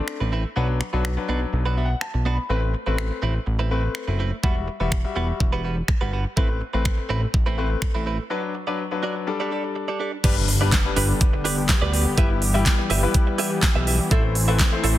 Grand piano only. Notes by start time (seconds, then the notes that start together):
Already playing: A3 C4 D4
0.56 F#3 D4 B4
0.93 F#3 D4 B4
1.17 F#3 D4 B4
1.77 E5
1.85 F#5
2.01 A5
2.33 B5
2.49 A3 C4 B4
2.87 A3 C4 B4
3.71 A3 C4 B4
4.43 G3 F#4 E5
4.80 G3 F#4 E5
5.04 G3 F#4 E5
6.37 A3 C4 B4
6.74 A3 C4 B4
7.58 A3 C4 B4
8.30 F#3 D4 B4
8.67 F#3 D4 B4
8.92 F#3 D4 B4
9.27 G3 D4 A4
10.24 G3 D4 B4
10.61 G3 D4 B4
10.85 G3 D4 B4
12.17 G3 E4 B4
12.54 G3 E4 G4
13.03 G3 E4 B4
14.11 A3 E4 C5
14.48 A3 E4 B4
14.72 A3 E4 C5